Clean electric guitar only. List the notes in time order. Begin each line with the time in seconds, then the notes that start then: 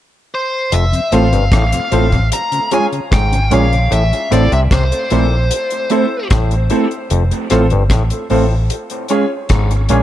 1.12 A3 C4 F4 A4
1.92 A3 C4 F4 A4
2.72 G#3 C#4 F4 G#4
3.31 muted clean electric guitar stroke
3.51 G#3 C#4 F4 G#4
4.31 A3 C4 E4 A4
5.11 A3 C4 E4 A4
5.90 A3 C4 E4 A4
6.51 muted clean electric guitar stroke
6.71 A3 C4 E4 A4
7.51 A3 C4 F4 A4
8.30 A3 C4 F4 A4
9.10 G#3 C#4 F4 G#4
9.70 muted clean electric guitar stroke
9.89 G#3 C#4 F4 G#4